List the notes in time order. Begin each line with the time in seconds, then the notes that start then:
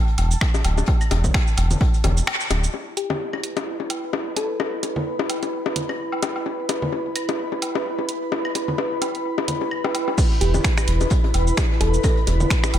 Already playing: A5
0.08 closed hi-hat
0.18 E1, closed hi-hat, low woodblock
0.31 shaker
0.41 finger snap, kick, snare, closed hi-hat, low woodblock
0.54 snare, high bongo, shaker
0.64 D1, closed hi-hat, low woodblock
0.78 high bongo, shaker
0.86 kick, closed hi-hat, low woodblock
1.01 closed hi-hat, high woodblock, shaker
1.11 E1, closed hi-hat, high bongo, low woodblock
1.24 kick, low conga, shaker
1.34 finger snap, kick, snare, closed hi-hat, low woodblock
1.47 shaker
1.57 E1, closed hi-hat, low woodblock
1.71 closed hi-hat, low conga, shaker
1.81 kick, closed hi-hat, low woodblock
1.94 closed hi-hat, shaker
2.04 E1, closed hi-hat, high bongo, low conga, low woodblock
2.17 closed hi-hat, shaker
2.27 finger snap, closed hi-hat, high woodblock, low woodblock
2.40 closed hi-hat, shaker
2.50 D1, closed hi-hat, high bongo, low woodblock
2.63 closed hi-hat, shaker
2.74 E4, high bongo
2.97 G4, closed hi-hat
3.10 G4, high bongo, low conga
3.22 B4
3.33 B5, high bongo, high woodblock
3.44 closed hi-hat
3.57 closed hi-hat, high bongo
3.80 high bongo
3.90 closed hi-hat, low woodblock
4.13 high bongo
4.36 A4, closed hi-hat, high bongo
4.60 high bongo, high woodblock
4.83 closed hi-hat, high bongo
4.96 low conga
5.19 high bongo
5.30 closed hi-hat, low woodblock
5.43 closed hi-hat, high bongo
5.66 high bongo
5.76 closed hi-hat, low conga
5.89 high bongo, high woodblock
6.12 low woodblock
6.23 closed hi-hat, high bongo, low woodblock
6.36 low woodblock
6.46 high bongo
6.69 closed hi-hat, high bongo
6.82 low conga
6.92 high bongo
7.16 closed hi-hat, high woodblock
7.29 closed hi-hat, high bongo
7.52 high bongo
7.62 closed hi-hat, low woodblock
7.75 high bongo
7.99 high bongo
8.09 closed hi-hat
8.32 high bongo
8.45 high woodblock
8.55 closed hi-hat, high bongo
8.68 low conga
8.78 high bongo
9.02 closed hi-hat, high bongo, low woodblock
9.15 closed hi-hat
9.38 high bongo
9.48 closed hi-hat, low conga
9.61 high bongo
9.71 high woodblock
9.84 high bongo, low woodblock
9.95 closed hi-hat, low woodblock
10.08 high bongo, low woodblock
10.18 kick, closed hi-hat, crash, high bongo, shaker
10.31 closed hi-hat
10.41 E1 G4, closed hi-hat, shaker
10.54 G4, high bongo, low conga, shaker
10.64 finger snap, kick, snare, closed hi-hat, shaker
10.78 finger snap, high bongo, high woodblock, shaker
10.87 E1, closed hi-hat
11.01 closed hi-hat, high bongo, shaker
11.10 kick, closed hi-hat, shaker
11.24 closed hi-hat, high bongo
11.34 E1, closed hi-hat, low woodblock, shaker
11.47 shaker
11.57 finger snap, kick, snare, closed hi-hat, high bongo, shaker
11.71 snare
11.81 E1 A4, closed hi-hat, high bongo
11.94 shaker
12.03 kick, closed hi-hat, high bongo, high woodblock, shaker
12.17 closed hi-hat
12.27 E1, closed hi-hat, high bongo, shaker
12.40 low conga, shaker
12.50 finger snap, kick, snare, closed hi-hat, shaker
12.64 finger snap, high bongo, shaker
12.74 E1, closed hi-hat, low woodblock